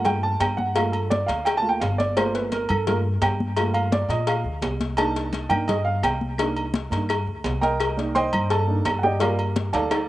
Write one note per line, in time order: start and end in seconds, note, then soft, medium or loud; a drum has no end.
0.00 0.36 G2 medium
0.00 0.38 A3 medium
0.00 0.38 A#3 medium
0.00 0.38 F4 medium
0.05 0.22 G5 medium
0.05 cowbell medium
0.05 high conga soft
0.05 low conga medium
0.05 low agogo medium
0.23 0.40 A5 medium
0.23 high conga soft
0.40 1.22 G2 medium
0.40 0.57 G5 medium
0.40 cowbell medium
0.40 high conga soft
0.40 low timbale medium
0.40 low agogo loud
0.40 claves medium
0.57 0.75 F#5 medium
0.57 high conga medium
0.75 0.91 A3 medium
0.75 0.91 A#3 soft
0.75 1.26 F4 medium
0.75 0.93 F5 medium
0.75 cowbell loud
0.75 high conga soft
0.75 low agogo loud
0.75 claves medium
0.92 1.10 A4 medium
0.92 high conga soft
0.92 low agogo medium
1.10 1.28 D5 medium
1.10 cowbell medium
1.10 high conga loud
1.10 low timbale medium
1.26 1.78 D2 medium
1.26 1.44 F5 medium
1.26 cowbell medium
1.26 high conga soft
1.26 low agogo medium
1.45 1.57 G5 medium
1.45 cowbell medium
1.45 high conga soft
1.45 low agogo loud
1.45 claves medium
1.57 1.69 A5 loud
1.62 1.78 A3 medium
1.62 1.79 A#3 soft
1.62 1.79 F4 medium
1.62 high conga soft
1.69 1.81 G5 medium
1.80 2.64 G1 medium
1.80 1.98 F5 medium
1.80 cowbell medium
1.80 high conga soft
1.80 low timbale medium
1.80 low agogo medium
1.98 2.16 D5 medium
1.98 cowbell medium
1.98 high conga medium
2.16 2.67 A3 medium
2.16 2.67 A#3 medium
2.16 2.67 F4 medium
2.16 2.34 C5 medium
2.16 cowbell loud
2.16 low agogo loud
2.16 claves medium
2.35 2.52 B4 medium
2.35 cowbell medium
2.35 high conga soft
2.52 2.69 A#4 medium
2.52 cowbell medium
2.52 high conga medium
2.52 low timbale medium
2.52 low agogo medium
2.69 3.18 G2 loud
2.69 2.87 A4 medium
2.69 high conga soft
2.69 low conga medium
2.69 low agogo loud
2.69 claves medium
2.87 3.03 A3 medium
2.87 3.03 A#3 soft
2.87 3.03 F4 medium
2.87 2.98 A#4 medium
2.87 cowbell loud
2.87 high conga soft
2.87 low conga medium
2.87 low agogo medium
3.05 high conga soft
3.21 4.04 G2 medium
3.21 3.71 G5 medium
3.21 cowbell medium
3.21 high conga soft
3.21 low timbale medium
3.21 low agogo loud
3.21 claves medium
3.40 high conga medium
3.56 4.07 A3 medium
3.56 4.07 A#3 soft
3.56 4.08 F4 medium
3.56 cowbell loud
3.56 high conga soft
3.56 low agogo loud
3.56 claves medium
3.74 3.91 F5 medium
3.74 high conga soft
3.74 low agogo loud
3.92 4.09 D5 medium
3.92 cowbell medium
3.92 high conga loud
3.92 low timbale medium
4.09 4.42 A#2 loud
4.09 4.27 D#5 medium
4.09 cowbell medium
4.09 high conga soft
4.09 low agogo medium
4.27 4.60 F5 medium
4.27 cowbell loud
4.27 high conga soft
4.27 low agogo loud
4.27 claves medium
4.44 4.61 D2 medium
4.44 high conga soft
4.62 5.44 C2 medium
4.62 cowbell medium
4.62 high conga soft
4.62 low timbale medium
4.62 low agogo medium
4.80 cowbell medium
4.80 high conga medium
4.97 5.48 A#3 medium
4.97 5.48 D4 medium
4.97 5.48 D#4 medium
4.97 5.47 A5 loud
4.97 cowbell loud
4.97 high conga soft
4.97 low agogo loud
4.97 claves medium
5.15 cowbell medium
5.15 high conga soft
5.33 cowbell medium
5.33 high conga medium
5.33 low timbale medium
5.33 low agogo medium
5.49 5.99 G2 medium
5.49 5.66 A#3 medium
5.49 5.66 D4 soft
5.49 5.66 D#4 medium
5.49 5.67 G5 medium
5.49 high conga soft
5.49 low conga medium
5.49 low agogo loud
5.49 claves medium
5.68 5.85 D#5 medium
5.68 cowbell medium
5.68 high conga soft
5.68 low conga medium
5.68 low agogo medium
5.85 6.02 F5 medium
5.85 high conga soft
6.03 6.85 C2 medium
6.03 6.37 G5 medium
6.03 cowbell medium
6.03 high conga soft
6.03 low timbale medium
6.03 low agogo loud
6.03 claves medium
6.21 high conga medium
6.38 6.62 A#3 medium
6.38 6.62 D4 medium
6.38 6.62 D#4 medium
6.38 cowbell loud
6.38 low agogo loud
6.38 claves medium
6.56 high conga soft
6.56 low agogo medium
6.74 cowbell medium
6.74 high conga loud
6.74 low timbale medium
6.90 7.24 G2 medium
6.90 7.07 A#3 soft
6.90 7.07 D4 soft
6.90 7.07 D#4 soft
6.90 cowbell medium
6.90 high conga soft
6.90 low agogo medium
7.09 cowbell medium
7.09 high conga soft
7.09 low agogo loud
7.09 claves medium
7.27 7.43 D2 medium
7.27 high conga soft
7.44 8.27 C2 medium
7.44 cowbell medium
7.44 high conga soft
7.44 low timbale medium
7.44 low agogo medium
7.61 8.12 A#4 medium
7.61 8.11 D#5 medium
7.61 8.11 G5 medium
7.61 8.11 A#5 medium
7.61 cowbell medium
7.61 high conga medium
7.80 cowbell loud
7.80 high conga soft
7.80 low agogo loud
7.80 claves medium
7.97 8.66 A#3 medium
7.97 8.67 D#4 medium
7.97 9.03 D5 soft
7.97 cowbell medium
7.97 high conga soft
8.15 8.48 C5 medium
8.15 8.48 D#5 medium
8.15 8.48 G5 medium
8.15 8.48 C6 loud
8.15 cowbell medium
8.15 high conga medium
8.15 low timbale medium
8.15 low agogo medium
8.33 8.82 G2 loud
8.33 high conga soft
8.33 low conga medium
8.33 low agogo loud
8.33 claves medium
8.50 9.00 A4 medium
8.50 9.00 A5 medium
8.50 cowbell loud
8.50 high conga soft
8.50 low agogo medium
8.67 8.84 A#3 medium
8.67 8.84 D4 soft
8.67 8.84 D#4 medium
8.67 high conga soft
8.85 9.68 G2 medium
8.85 cowbell medium
8.85 high conga soft
8.85 low timbale medium
8.85 low agogo loud
8.85 claves medium
8.99 9.01 F#5 medium
9.03 9.21 G4 medium
9.03 9.20 D5 medium
9.03 9.21 D#5 medium
9.03 9.21 G5 medium
9.03 high conga medium
9.19 10.09 G3 medium
9.19 10.09 A#3 medium
9.19 9.38 F4 medium
9.19 9.38 A#4 medium
9.19 9.38 D5 medium
9.19 9.38 F5 medium
9.19 cowbell loud
9.19 high conga soft
9.19 low agogo loud
9.19 claves medium
9.39 high conga soft
9.39 low agogo medium
9.56 cowbell medium
9.56 high conga loud
9.56 low timbale medium
9.73 10.07 D2 loud
9.73 10.09 A4 medium
9.73 10.09 D5 medium
9.73 10.09 F5 medium
9.73 10.09 A5 medium
9.73 cowbell medium
9.73 high conga soft
9.73 high timbale medium
9.73 low agogo medium
9.91 cowbell loud
9.91 high conga soft
9.91 high timbale medium
9.91 low agogo medium
9.91 claves medium